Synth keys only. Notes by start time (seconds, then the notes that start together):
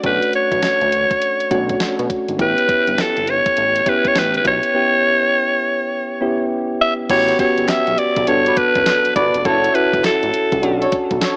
Already playing: A3 C#4 D4 F#4
0.03 A3 C#4 D4 F#4
1.50 A3 C#4 D4 F#4
2.38 B3 C#4 E4 G4
3.86 B3 C#4 E4 G4
4.74 B3 C#4 E4 G4
6.21 B3 C#4 E4 G4
7.09 B3 C#4 F#4 G4
7.39 B3 C#4 F#4 G4
8.27 B3 D4 F#4 A4
9.45 C#4 E4 F#4 A4
9.74 C#4 E4 F#4 A4
10.62 C#4 D4 F#4 A4